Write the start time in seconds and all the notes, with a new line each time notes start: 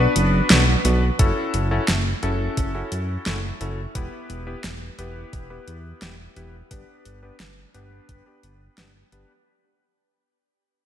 0.00 B3 D4 F#4 B4
0.16 F#1, closed hi-hat
0.50 B1 B3 D4 F#4 B4, snare, closed hi-hat
0.85 B1 B3 D4 F#4 B4, closed hi-hat
1.19 F#1 C#4 E4 F#4 A4, kick, closed hi-hat
1.54 F#1, closed hi-hat
1.71 C#4 E4 F#4 A4
1.88 F#1, snare, closed hi-hat
2.23 F#1 C#4 E4 F#4 A4, closed hi-hat
2.57 F#1, kick, closed hi-hat
2.75 C#4 E4 F#4 A4
2.92 F#2, closed hi-hat
3.26 F#1 C#4 E4 F#4 A4, snare, closed hi-hat
3.61 F#1 C#4 E4 F#4 A4, closed hi-hat
3.95 E1 B3 E4 G4 B4, kick, closed hi-hat
4.30 E1, closed hi-hat
4.47 B3 E4 G4 B4
4.64 E1, snare, closed hi-hat
4.98 E1 B3 E4 G4 B4, closed hi-hat
5.33 E1, kick, closed hi-hat
5.50 B3 E4 G4 B4
5.68 E2, closed hi-hat
6.02 E1 B3 E4 G4 B4, snare, closed hi-hat
6.36 E1 B3 E4 G4 B4, closed hi-hat
6.71 G1 B3 D4 G4 B4, kick, closed hi-hat
7.05 G1, closed hi-hat
7.23 B3 D4 G4 B4
7.40 G1, snare, closed hi-hat
7.74 G1 B3 D4 G4 B4, closed hi-hat
8.09 G1, kick, closed hi-hat
8.26 B3 D4 G4 B4
8.43 G1, closed hi-hat
8.78 G1 B3 D4 G4 B4, snare, closed hi-hat
9.12 G1 B3 D4 G4 B4, closed hi-hat